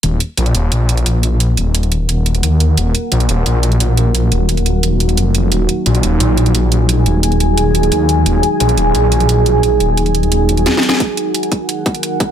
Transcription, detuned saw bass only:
\new Staff \with { instrumentName = "Detuned saw bass" } { \clef bass \time 4/4 \key ees \minor \tempo 4 = 175 ees,,8 r8 bes,,8 ees,,8 bes,,4 bes,,4~ | bes,,8 ees,,4. ees,,4 ees,4 | ees,,8 r8 bes,,8 ees,,8 bes,,4 bes,,4~ | bes,,8 ees,,4. ees,,4 f,,4 |
ees,,8 r8 bes,,8 ees,,8 bes,,4 bes,,4~ | bes,,8 ees,,4. ees,,4 ees,4 | ees,,8 r8 bes,,8 ees,,8 bes,,4 bes,,4~ | bes,,8 ees,,4. ees,,8 ees,,8 r4 |
r1 | }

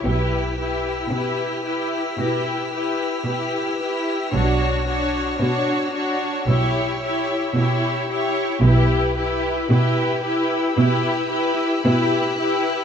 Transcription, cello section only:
\new Staff \with { instrumentName = "Cello section" } { \clef bass \time 4/4 \key e \dorian \tempo 4 = 56 b,4 b,4 b,4 b,4 | b,4 b,4 b,4 b,4 | b,4 b,4 b,4 b,4 | }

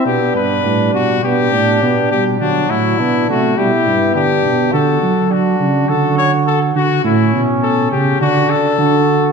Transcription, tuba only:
\new Staff \with { instrumentName = "Tuba" } { \clef bass \time 4/4 \key g \major \tempo 4 = 103 b,8 g,8 a,8 b,8 b,8 a,8 b,8 b,8 | d8 a,8 b,8 c8 b,8 g,8 d8 b,8 | d8 fis4 cis8 d4. d8 | a,8 b,4 cis8 d8 r8 d4 | }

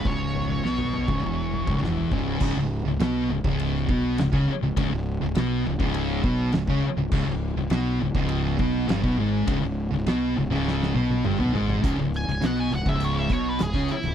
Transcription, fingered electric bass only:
\new Staff \with { instrumentName = "Fingered electric bass" } { \clef bass \time 4/4 \key cis \minor \tempo 4 = 102 cis,,4 b,,8. cis,,16 e,,8. cis,,16 e,,8 cis,,8 | cis,,16 cis,,8 cis,,16 b,,8 cis,,16 cis,,8. b,,8 cis,,16 cis,16 r16 cis,,16 | cis,,16 cis,,8 cis,,16 b,,8 cis,,16 cis,,8. b,,8 cis,,16 cis,16 r16 cis,,16 | cis,,16 cis,,8 cis,,16 b,,8 cis,,16 cis,,8. b,,8 g,,16 b,,16 gis,,8 |
cis,,16 cis,,8 cis,,16 b,,8 cis,,16 cis,,8. b,,8 g,,16 b,,16 gis,,8 | cis,,16 cis,,8 cis,,16 b,,8 cis,,16 cis,,8. b,,8 cis,,16 cis,16 r16 cis,,16 | }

